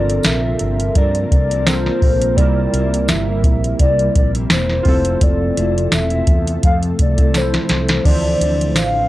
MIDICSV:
0, 0, Header, 1, 7, 480
1, 0, Start_track
1, 0, Tempo, 710059
1, 1603, Time_signature, 4, 2, 24, 8
1, 6141, End_track
2, 0, Start_track
2, 0, Title_t, "Soft synth lead"
2, 0, Program_c, 0, 80
2, 0, Note_on_c, 0, 74, 86
2, 165, Note_on_c, 0, 76, 92
2, 175, Note_off_c, 0, 74, 0
2, 655, Note_on_c, 0, 74, 95
2, 665, Note_off_c, 0, 76, 0
2, 883, Note_off_c, 0, 74, 0
2, 887, Note_on_c, 0, 74, 90
2, 1126, Note_on_c, 0, 72, 96
2, 1136, Note_off_c, 0, 74, 0
2, 1601, Note_on_c, 0, 74, 92
2, 1611, Note_off_c, 0, 72, 0
2, 2082, Note_off_c, 0, 74, 0
2, 2085, Note_on_c, 0, 76, 98
2, 2537, Note_off_c, 0, 76, 0
2, 2567, Note_on_c, 0, 74, 97
2, 2788, Note_off_c, 0, 74, 0
2, 2819, Note_on_c, 0, 74, 88
2, 2914, Note_off_c, 0, 74, 0
2, 3050, Note_on_c, 0, 72, 91
2, 3536, Note_on_c, 0, 74, 94
2, 3546, Note_off_c, 0, 72, 0
2, 4009, Note_off_c, 0, 74, 0
2, 4017, Note_on_c, 0, 76, 102
2, 4463, Note_off_c, 0, 76, 0
2, 4490, Note_on_c, 0, 77, 111
2, 4584, Note_off_c, 0, 77, 0
2, 4741, Note_on_c, 0, 74, 94
2, 4984, Note_on_c, 0, 72, 93
2, 4995, Note_off_c, 0, 74, 0
2, 5441, Note_off_c, 0, 72, 0
2, 5445, Note_on_c, 0, 74, 91
2, 5934, Note_on_c, 0, 77, 102
2, 5944, Note_off_c, 0, 74, 0
2, 6141, Note_off_c, 0, 77, 0
2, 6141, End_track
3, 0, Start_track
3, 0, Title_t, "Synth keys"
3, 0, Program_c, 1, 88
3, 0, Control_c, 1, 64, 127
3, 0, Note_on_c, 1, 60, 61
3, 0, Note_on_c, 1, 65, 65
3, 0, Note_on_c, 1, 69, 68
3, 0, Note_on_c, 1, 70, 68
3, 1088, Note_off_c, 1, 69, 0
3, 1093, Note_off_c, 1, 60, 0
3, 1099, Note_off_c, 1, 65, 0
3, 1104, Note_off_c, 1, 70, 0
3, 1121, Note_on_c, 1, 69, 49
3, 1126, Note_on_c, 1, 60, 44
3, 1132, Note_on_c, 1, 65, 44
3, 1136, Note_on_c, 1, 70, 54
3, 1591, Note_on_c, 1, 55, 69
3, 1594, Note_off_c, 1, 60, 0
3, 1602, Note_off_c, 1, 69, 0
3, 1602, Note_on_c, 1, 60, 65
3, 1608, Note_off_c, 1, 65, 0
3, 1609, Note_off_c, 1, 70, 0
3, 1613, Control_c, 1, 64, 0
3, 1615, Note_on_c, 1, 64, 61
3, 1625, Note_on_c, 1, 70, 72
3, 1732, Control_c, 1, 64, 127
3, 3250, Note_off_c, 1, 55, 0
3, 3255, Note_off_c, 1, 60, 0
3, 3262, Note_off_c, 1, 64, 0
3, 3263, Note_on_c, 1, 65, 67
3, 3267, Note_off_c, 1, 70, 0
3, 3276, Note_on_c, 1, 60, 60
3, 3293, Control_c, 1, 64, 0
3, 3299, Note_on_c, 1, 69, 75
3, 3396, Control_c, 1, 64, 127
3, 4926, Note_off_c, 1, 65, 0
3, 4932, Note_off_c, 1, 60, 0
3, 4944, Note_off_c, 1, 69, 0
3, 4957, Note_on_c, 1, 53, 46
3, 4961, Note_on_c, 1, 60, 43
3, 4967, Note_on_c, 1, 64, 44
3, 4971, Note_on_c, 1, 69, 50
3, 5421, Note_off_c, 1, 53, 0
3, 5429, Note_on_c, 1, 53, 68
3, 5442, Note_off_c, 1, 60, 0
3, 5442, Note_on_c, 1, 62, 60
3, 5445, Note_off_c, 1, 64, 0
3, 5447, Note_off_c, 1, 69, 0
3, 5451, Note_on_c, 1, 52, 63
3, 5452, Control_c, 1, 64, 0
3, 5461, Note_on_c, 1, 72, 76
3, 5557, Control_c, 1, 64, 127
3, 6141, Note_off_c, 1, 52, 0
3, 6141, Note_off_c, 1, 53, 0
3, 6141, Note_off_c, 1, 62, 0
3, 6141, Note_off_c, 1, 72, 0
3, 6141, End_track
4, 0, Start_track
4, 0, Title_t, "Clean electric guitar"
4, 0, Program_c, 2, 27
4, 0, Note_on_c, 2, 53, 58
4, 0, Note_on_c, 2, 60, 55
4, 0, Note_on_c, 2, 62, 60
4, 0, Note_on_c, 2, 70, 68
4, 283, Note_off_c, 2, 70, 0
4, 290, Note_off_c, 2, 53, 0
4, 291, Note_on_c, 2, 70, 51
4, 296, Note_off_c, 2, 60, 0
4, 298, Note_off_c, 2, 62, 0
4, 306, Note_on_c, 2, 62, 49
4, 311, Note_on_c, 2, 60, 46
4, 318, Note_on_c, 2, 53, 46
4, 630, Note_off_c, 2, 53, 0
4, 638, Note_on_c, 2, 53, 63
4, 641, Note_off_c, 2, 70, 0
4, 642, Note_off_c, 2, 60, 0
4, 646, Note_off_c, 2, 62, 0
4, 651, Note_on_c, 2, 60, 62
4, 654, Note_on_c, 2, 62, 64
4, 664, Note_on_c, 2, 70, 64
4, 1004, Note_off_c, 2, 70, 0
4, 1012, Note_on_c, 2, 70, 55
4, 1013, Note_off_c, 2, 53, 0
4, 1016, Note_off_c, 2, 62, 0
4, 1019, Note_off_c, 2, 60, 0
4, 1024, Note_on_c, 2, 62, 47
4, 1032, Note_on_c, 2, 60, 43
4, 1038, Note_on_c, 2, 53, 46
4, 1248, Note_off_c, 2, 70, 0
4, 1256, Note_off_c, 2, 62, 0
4, 1256, Note_on_c, 2, 70, 59
4, 1263, Note_off_c, 2, 60, 0
4, 1265, Note_on_c, 2, 62, 53
4, 1267, Note_off_c, 2, 53, 0
4, 1275, Note_on_c, 2, 60, 48
4, 1280, Note_on_c, 2, 53, 45
4, 1600, Note_on_c, 2, 48, 80
4, 1601, Note_off_c, 2, 53, 0
4, 1604, Note_off_c, 2, 70, 0
4, 1604, Note_on_c, 2, 55, 87
4, 1606, Note_off_c, 2, 60, 0
4, 1608, Note_off_c, 2, 62, 0
4, 1609, Note_on_c, 2, 58, 84
4, 1614, Note_on_c, 2, 64, 94
4, 1839, Note_off_c, 2, 48, 0
4, 1844, Note_off_c, 2, 55, 0
4, 1846, Note_off_c, 2, 58, 0
4, 1847, Note_on_c, 2, 48, 62
4, 1849, Note_off_c, 2, 64, 0
4, 1858, Note_on_c, 2, 55, 64
4, 1865, Note_on_c, 2, 58, 59
4, 1873, Note_on_c, 2, 64, 70
4, 2207, Note_off_c, 2, 64, 0
4, 2215, Note_on_c, 2, 64, 53
4, 2217, Note_off_c, 2, 48, 0
4, 2219, Note_off_c, 2, 58, 0
4, 2223, Note_off_c, 2, 55, 0
4, 2227, Note_on_c, 2, 58, 47
4, 2238, Note_on_c, 2, 55, 42
4, 2561, Note_on_c, 2, 48, 56
4, 2563, Note_off_c, 2, 64, 0
4, 2565, Note_off_c, 2, 55, 0
4, 2569, Note_off_c, 2, 58, 0
4, 2573, Note_on_c, 2, 55, 58
4, 2585, Note_on_c, 2, 58, 60
4, 2589, Note_on_c, 2, 64, 64
4, 2930, Note_off_c, 2, 64, 0
4, 2934, Note_off_c, 2, 48, 0
4, 2938, Note_on_c, 2, 64, 52
4, 2940, Note_off_c, 2, 55, 0
4, 2942, Note_off_c, 2, 58, 0
4, 2951, Note_on_c, 2, 58, 49
4, 2960, Note_on_c, 2, 55, 47
4, 3173, Note_off_c, 2, 64, 0
4, 3181, Note_on_c, 2, 64, 55
4, 3183, Note_off_c, 2, 58, 0
4, 3187, Note_off_c, 2, 55, 0
4, 3194, Note_on_c, 2, 58, 52
4, 3204, Note_on_c, 2, 55, 46
4, 3286, Note_off_c, 2, 64, 0
4, 3288, Note_on_c, 2, 53, 68
4, 3290, Note_off_c, 2, 55, 0
4, 3292, Note_off_c, 2, 58, 0
4, 3293, Note_on_c, 2, 57, 77
4, 3302, Note_on_c, 2, 60, 81
4, 3306, Note_on_c, 2, 64, 79
4, 3757, Note_off_c, 2, 53, 0
4, 3760, Note_on_c, 2, 53, 59
4, 3766, Note_off_c, 2, 57, 0
4, 3768, Note_on_c, 2, 57, 65
4, 3777, Note_off_c, 2, 60, 0
4, 3779, Note_off_c, 2, 64, 0
4, 3780, Note_on_c, 2, 60, 62
4, 3782, Note_on_c, 2, 64, 70
4, 4124, Note_off_c, 2, 64, 0
4, 4132, Note_on_c, 2, 64, 55
4, 4133, Note_off_c, 2, 53, 0
4, 4138, Note_off_c, 2, 57, 0
4, 4138, Note_off_c, 2, 60, 0
4, 4146, Note_on_c, 2, 60, 46
4, 4158, Note_on_c, 2, 57, 42
4, 4478, Note_on_c, 2, 53, 58
4, 4481, Note_off_c, 2, 64, 0
4, 4482, Note_off_c, 2, 57, 0
4, 4489, Note_off_c, 2, 60, 0
4, 4490, Note_on_c, 2, 57, 57
4, 4498, Note_on_c, 2, 60, 60
4, 4849, Note_on_c, 2, 64, 54
4, 4852, Note_off_c, 2, 53, 0
4, 4856, Note_off_c, 2, 60, 0
4, 4858, Note_off_c, 2, 57, 0
4, 4864, Note_on_c, 2, 60, 48
4, 4878, Note_on_c, 2, 57, 42
4, 5080, Note_off_c, 2, 64, 0
4, 5088, Note_on_c, 2, 64, 60
4, 5093, Note_off_c, 2, 60, 0
4, 5101, Note_on_c, 2, 60, 49
4, 5106, Note_off_c, 2, 57, 0
4, 5114, Note_on_c, 2, 57, 42
4, 5439, Note_off_c, 2, 64, 0
4, 5443, Note_off_c, 2, 57, 0
4, 5446, Note_off_c, 2, 60, 0
4, 5446, Note_on_c, 2, 50, 79
4, 5446, Note_on_c, 2, 53, 85
4, 5456, Note_on_c, 2, 60, 79
4, 5458, Note_on_c, 2, 64, 84
4, 5677, Note_off_c, 2, 50, 0
4, 5684, Note_off_c, 2, 53, 0
4, 5685, Note_on_c, 2, 50, 56
4, 5689, Note_off_c, 2, 60, 0
4, 5690, Note_off_c, 2, 64, 0
4, 5695, Note_on_c, 2, 53, 60
4, 5705, Note_on_c, 2, 60, 61
4, 5713, Note_on_c, 2, 64, 67
4, 6056, Note_off_c, 2, 50, 0
4, 6061, Note_off_c, 2, 53, 0
4, 6066, Note_off_c, 2, 60, 0
4, 6069, Note_off_c, 2, 64, 0
4, 6077, Note_on_c, 2, 60, 47
4, 6088, Note_on_c, 2, 53, 42
4, 6141, Note_off_c, 2, 53, 0
4, 6141, Note_off_c, 2, 60, 0
4, 6141, End_track
5, 0, Start_track
5, 0, Title_t, "Ambient pad"
5, 0, Program_c, 3, 92
5, 0, Note_on_c, 3, 48, 82
5, 0, Note_on_c, 3, 55, 68
5, 0, Note_on_c, 3, 58, 71
5, 0, Note_on_c, 3, 65, 86
5, 1579, Note_off_c, 3, 55, 0
5, 1582, Note_off_c, 3, 65, 0
5, 1602, Note_on_c, 3, 64, 86
5, 3251, Note_off_c, 3, 48, 0
5, 3252, Note_off_c, 3, 58, 0
5, 3265, Note_off_c, 3, 64, 0
5, 3290, Note_on_c, 3, 69, 88
5, 3292, Note_on_c, 3, 48, 81
5, 3295, Note_on_c, 3, 57, 76
5, 5424, Note_off_c, 3, 69, 0
5, 5426, Note_off_c, 3, 48, 0
5, 5427, Note_off_c, 3, 57, 0
5, 5453, Note_on_c, 3, 48, 73
5, 5455, Note_on_c, 3, 50, 73
5, 5458, Note_on_c, 3, 62, 87
5, 6141, Note_off_c, 3, 48, 0
5, 6141, Note_off_c, 3, 50, 0
5, 6141, Note_off_c, 3, 62, 0
5, 6141, End_track
6, 0, Start_track
6, 0, Title_t, "Fretless electric bass"
6, 0, Program_c, 4, 35
6, 0, Note_on_c, 4, 31, 93
6, 119, Note_off_c, 4, 31, 0
6, 171, Note_on_c, 4, 34, 94
6, 360, Note_off_c, 4, 34, 0
6, 411, Note_on_c, 4, 31, 89
6, 600, Note_off_c, 4, 31, 0
6, 648, Note_on_c, 4, 43, 100
6, 838, Note_off_c, 4, 43, 0
6, 890, Note_on_c, 4, 36, 86
6, 1271, Note_off_c, 4, 36, 0
6, 1369, Note_on_c, 4, 34, 91
6, 1606, Note_off_c, 4, 34, 0
6, 1606, Note_on_c, 4, 36, 107
6, 1797, Note_off_c, 4, 36, 0
6, 1847, Note_on_c, 4, 36, 97
6, 2089, Note_on_c, 4, 31, 83
6, 2099, Note_off_c, 4, 36, 0
6, 2324, Note_off_c, 4, 31, 0
6, 2324, Note_on_c, 4, 34, 96
6, 2516, Note_off_c, 4, 34, 0
6, 2566, Note_on_c, 4, 36, 90
6, 2757, Note_off_c, 4, 36, 0
6, 2811, Note_on_c, 4, 34, 81
6, 3000, Note_off_c, 4, 34, 0
6, 3040, Note_on_c, 4, 28, 94
6, 3233, Note_off_c, 4, 28, 0
6, 3284, Note_on_c, 4, 29, 88
6, 3475, Note_off_c, 4, 29, 0
6, 3524, Note_on_c, 4, 29, 100
6, 3716, Note_off_c, 4, 29, 0
6, 3768, Note_on_c, 4, 29, 99
6, 3958, Note_off_c, 4, 29, 0
6, 4003, Note_on_c, 4, 28, 93
6, 4195, Note_off_c, 4, 28, 0
6, 4243, Note_on_c, 4, 40, 97
6, 4435, Note_off_c, 4, 40, 0
6, 4487, Note_on_c, 4, 41, 100
6, 4677, Note_off_c, 4, 41, 0
6, 4731, Note_on_c, 4, 36, 85
6, 5111, Note_off_c, 4, 36, 0
6, 5205, Note_on_c, 4, 36, 84
6, 5396, Note_off_c, 4, 36, 0
6, 5445, Note_on_c, 4, 38, 104
6, 5636, Note_off_c, 4, 38, 0
6, 5684, Note_on_c, 4, 38, 96
6, 5927, Note_off_c, 4, 38, 0
6, 5927, Note_on_c, 4, 33, 90
6, 6117, Note_off_c, 4, 33, 0
6, 6141, End_track
7, 0, Start_track
7, 0, Title_t, "Drums"
7, 64, Note_on_c, 9, 42, 50
7, 132, Note_off_c, 9, 42, 0
7, 157, Note_on_c, 9, 54, 89
7, 166, Note_on_c, 9, 38, 106
7, 166, Note_on_c, 9, 42, 91
7, 225, Note_off_c, 9, 54, 0
7, 234, Note_off_c, 9, 38, 0
7, 234, Note_off_c, 9, 42, 0
7, 401, Note_on_c, 9, 42, 73
7, 469, Note_off_c, 9, 42, 0
7, 539, Note_on_c, 9, 42, 47
7, 606, Note_off_c, 9, 42, 0
7, 645, Note_on_c, 9, 42, 81
7, 646, Note_on_c, 9, 36, 86
7, 712, Note_off_c, 9, 42, 0
7, 714, Note_off_c, 9, 36, 0
7, 776, Note_on_c, 9, 42, 35
7, 843, Note_off_c, 9, 42, 0
7, 891, Note_on_c, 9, 36, 90
7, 892, Note_on_c, 9, 42, 76
7, 958, Note_off_c, 9, 36, 0
7, 959, Note_off_c, 9, 42, 0
7, 1022, Note_on_c, 9, 42, 50
7, 1089, Note_off_c, 9, 42, 0
7, 1126, Note_on_c, 9, 38, 111
7, 1126, Note_on_c, 9, 54, 84
7, 1129, Note_on_c, 9, 42, 76
7, 1194, Note_off_c, 9, 38, 0
7, 1194, Note_off_c, 9, 54, 0
7, 1196, Note_off_c, 9, 42, 0
7, 1259, Note_on_c, 9, 38, 35
7, 1327, Note_off_c, 9, 38, 0
7, 1366, Note_on_c, 9, 36, 95
7, 1367, Note_on_c, 9, 46, 51
7, 1434, Note_off_c, 9, 36, 0
7, 1435, Note_off_c, 9, 46, 0
7, 1497, Note_on_c, 9, 42, 55
7, 1565, Note_off_c, 9, 42, 0
7, 1606, Note_on_c, 9, 36, 104
7, 1608, Note_on_c, 9, 42, 100
7, 1673, Note_off_c, 9, 36, 0
7, 1676, Note_off_c, 9, 42, 0
7, 1850, Note_on_c, 9, 42, 81
7, 1918, Note_off_c, 9, 42, 0
7, 1986, Note_on_c, 9, 42, 54
7, 2054, Note_off_c, 9, 42, 0
7, 2083, Note_on_c, 9, 54, 86
7, 2087, Note_on_c, 9, 38, 103
7, 2087, Note_on_c, 9, 42, 85
7, 2150, Note_off_c, 9, 54, 0
7, 2154, Note_off_c, 9, 38, 0
7, 2155, Note_off_c, 9, 42, 0
7, 2324, Note_on_c, 9, 36, 108
7, 2325, Note_on_c, 9, 42, 75
7, 2391, Note_off_c, 9, 36, 0
7, 2393, Note_off_c, 9, 42, 0
7, 2462, Note_on_c, 9, 42, 46
7, 2530, Note_off_c, 9, 42, 0
7, 2565, Note_on_c, 9, 42, 83
7, 2567, Note_on_c, 9, 36, 88
7, 2633, Note_off_c, 9, 42, 0
7, 2635, Note_off_c, 9, 36, 0
7, 2699, Note_on_c, 9, 42, 36
7, 2766, Note_off_c, 9, 42, 0
7, 2809, Note_on_c, 9, 42, 72
7, 2810, Note_on_c, 9, 36, 92
7, 2876, Note_off_c, 9, 42, 0
7, 2878, Note_off_c, 9, 36, 0
7, 2940, Note_on_c, 9, 42, 46
7, 3007, Note_off_c, 9, 42, 0
7, 3042, Note_on_c, 9, 38, 108
7, 3044, Note_on_c, 9, 42, 72
7, 3052, Note_on_c, 9, 54, 85
7, 3109, Note_off_c, 9, 38, 0
7, 3112, Note_off_c, 9, 42, 0
7, 3119, Note_off_c, 9, 54, 0
7, 3174, Note_on_c, 9, 38, 37
7, 3241, Note_off_c, 9, 38, 0
7, 3278, Note_on_c, 9, 46, 48
7, 3284, Note_on_c, 9, 36, 94
7, 3346, Note_off_c, 9, 46, 0
7, 3351, Note_off_c, 9, 36, 0
7, 3412, Note_on_c, 9, 42, 56
7, 3480, Note_off_c, 9, 42, 0
7, 3524, Note_on_c, 9, 36, 98
7, 3524, Note_on_c, 9, 42, 100
7, 3591, Note_off_c, 9, 42, 0
7, 3592, Note_off_c, 9, 36, 0
7, 3768, Note_on_c, 9, 42, 74
7, 3835, Note_off_c, 9, 42, 0
7, 3906, Note_on_c, 9, 42, 51
7, 3974, Note_off_c, 9, 42, 0
7, 4001, Note_on_c, 9, 38, 108
7, 4001, Note_on_c, 9, 42, 89
7, 4005, Note_on_c, 9, 54, 88
7, 4068, Note_off_c, 9, 38, 0
7, 4069, Note_off_c, 9, 42, 0
7, 4072, Note_off_c, 9, 54, 0
7, 4126, Note_on_c, 9, 42, 33
7, 4194, Note_off_c, 9, 42, 0
7, 4239, Note_on_c, 9, 42, 75
7, 4241, Note_on_c, 9, 36, 102
7, 4306, Note_off_c, 9, 42, 0
7, 4308, Note_off_c, 9, 36, 0
7, 4377, Note_on_c, 9, 42, 50
7, 4444, Note_off_c, 9, 42, 0
7, 4483, Note_on_c, 9, 42, 79
7, 4485, Note_on_c, 9, 36, 93
7, 4550, Note_off_c, 9, 42, 0
7, 4553, Note_off_c, 9, 36, 0
7, 4615, Note_on_c, 9, 42, 35
7, 4682, Note_off_c, 9, 42, 0
7, 4725, Note_on_c, 9, 42, 74
7, 4728, Note_on_c, 9, 36, 94
7, 4793, Note_off_c, 9, 42, 0
7, 4795, Note_off_c, 9, 36, 0
7, 4853, Note_on_c, 9, 42, 48
7, 4857, Note_on_c, 9, 36, 78
7, 4921, Note_off_c, 9, 42, 0
7, 4924, Note_off_c, 9, 36, 0
7, 4964, Note_on_c, 9, 38, 56
7, 4964, Note_on_c, 9, 42, 73
7, 4968, Note_on_c, 9, 54, 82
7, 5031, Note_off_c, 9, 38, 0
7, 5032, Note_off_c, 9, 42, 0
7, 5036, Note_off_c, 9, 54, 0
7, 5096, Note_on_c, 9, 38, 70
7, 5096, Note_on_c, 9, 42, 39
7, 5163, Note_off_c, 9, 42, 0
7, 5164, Note_off_c, 9, 38, 0
7, 5199, Note_on_c, 9, 42, 67
7, 5201, Note_on_c, 9, 38, 84
7, 5266, Note_off_c, 9, 42, 0
7, 5269, Note_off_c, 9, 38, 0
7, 5330, Note_on_c, 9, 42, 57
7, 5334, Note_on_c, 9, 38, 89
7, 5398, Note_off_c, 9, 42, 0
7, 5402, Note_off_c, 9, 38, 0
7, 5444, Note_on_c, 9, 36, 97
7, 5445, Note_on_c, 9, 49, 75
7, 5511, Note_off_c, 9, 36, 0
7, 5512, Note_off_c, 9, 49, 0
7, 5688, Note_on_c, 9, 42, 80
7, 5756, Note_off_c, 9, 42, 0
7, 5822, Note_on_c, 9, 42, 54
7, 5889, Note_off_c, 9, 42, 0
7, 5920, Note_on_c, 9, 38, 99
7, 5920, Note_on_c, 9, 42, 92
7, 5923, Note_on_c, 9, 54, 91
7, 5987, Note_off_c, 9, 38, 0
7, 5988, Note_off_c, 9, 42, 0
7, 5991, Note_off_c, 9, 54, 0
7, 6141, End_track
0, 0, End_of_file